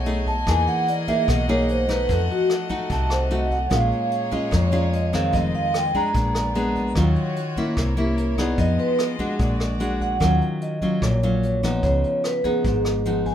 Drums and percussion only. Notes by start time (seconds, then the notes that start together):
0.06 closed hi-hat
0.27 kick, closed hi-hat
0.47 kick, cross-stick, closed hi-hat
0.68 closed hi-hat
0.88 closed hi-hat
1.08 kick, closed hi-hat
1.28 kick, cross-stick, closed hi-hat
1.49 closed hi-hat
1.69 closed hi-hat
1.89 kick, cross-stick, closed hi-hat
2.09 kick, closed hi-hat
2.30 closed hi-hat
2.50 cross-stick, closed hi-hat
2.70 kick, closed hi-hat
2.90 kick, closed hi-hat
3.10 cross-stick, closed hi-hat
3.30 closed hi-hat
3.51 kick, closed hi-hat
3.71 kick, cross-stick, closed hi-hat
3.92 closed hi-hat
4.12 closed hi-hat
4.32 kick, closed hi-hat
4.52 kick, cross-stick, closed hi-hat
4.73 closed hi-hat
4.93 closed hi-hat
5.13 kick, cross-stick, closed hi-hat
5.33 kick, closed hi-hat
5.54 closed hi-hat
5.74 cross-stick, closed hi-hat
5.94 kick, closed hi-hat
6.14 kick, closed hi-hat
6.35 cross-stick, closed hi-hat
6.55 closed hi-hat
6.75 kick, closed hi-hat
6.95 kick, cross-stick, closed hi-hat
7.16 closed hi-hat
7.36 closed hi-hat
7.56 kick, closed hi-hat
7.77 kick, cross-stick, closed hi-hat
7.97 closed hi-hat
8.18 closed hi-hat
8.38 kick, cross-stick, closed hi-hat
8.58 kick, closed hi-hat
8.79 closed hi-hat
8.99 cross-stick, closed hi-hat
9.19 kick, closed hi-hat
9.39 kick, closed hi-hat
9.60 cross-stick, closed hi-hat
9.80 closed hi-hat
10.00 kick, closed hi-hat
10.21 kick, cross-stick, closed hi-hat
10.41 closed hi-hat
10.61 closed hi-hat
10.82 kick, closed hi-hat
11.02 kick, cross-stick, closed hi-hat
11.22 closed hi-hat
11.43 closed hi-hat
11.63 kick, cross-stick, closed hi-hat
11.83 kick, closed hi-hat
12.04 closed hi-hat
12.24 cross-stick, closed hi-hat
12.44 kick, closed hi-hat
12.64 kick, closed hi-hat
12.85 cross-stick, closed hi-hat
13.05 closed hi-hat
13.26 kick, closed hi-hat